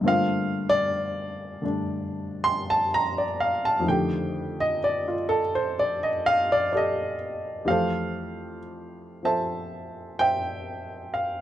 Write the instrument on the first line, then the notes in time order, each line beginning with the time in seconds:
grand piano
0.01 G2 D3 A3 A#3
0.06 C4 F4 F5
0.69 D5
1.62 D3 G3 A3 D4
2.44 C6
2.70 A5
2.94 A#5
3.18 D5
3.40 F5
3.65 A5
3.80 F2 D#3
3.86 D3 A3 G5
3.92 G4
4.60 D#5
4.84 D5
5.08 F4
5.29 A4
5.55 C5
5.79 D5
6.03 D#5
6.26 F5
6.52 D5
6.73 G4 A4 D5
6.77 D#5
7.65 F2 E3 A3 G4 F5
7.70 A4 C5
9.23 F3 C4 A4 C5 E5 A5
10.19 C5 E5 G5
11.14 F5